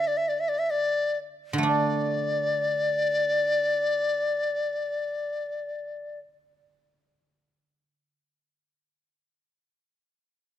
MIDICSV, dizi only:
0, 0, Header, 1, 2, 480
1, 0, Start_track
1, 0, Tempo, 878477
1, 389, Tempo, 938967
1, 869, Time_signature, 4, 2, 24, 8
1, 2309, Tempo, 956938
1, 5378, End_track
2, 0, Start_track
2, 0, Title_t, "Dizi"
2, 0, Program_c, 0, 73
2, 40, Note_on_c, 0, 74, 65
2, 94, Note_on_c, 0, 76, 60
2, 102, Note_off_c, 0, 74, 0
2, 156, Note_on_c, 0, 74, 65
2, 164, Note_off_c, 0, 76, 0
2, 218, Note_on_c, 0, 76, 57
2, 227, Note_off_c, 0, 74, 0
2, 265, Note_on_c, 0, 74, 60
2, 274, Note_off_c, 0, 76, 0
2, 322, Note_on_c, 0, 76, 60
2, 330, Note_off_c, 0, 74, 0
2, 385, Note_on_c, 0, 74, 70
2, 392, Note_off_c, 0, 76, 0
2, 631, Note_off_c, 0, 74, 0
2, 884, Note_on_c, 0, 74, 68
2, 3176, Note_off_c, 0, 74, 0
2, 5378, End_track
0, 0, End_of_file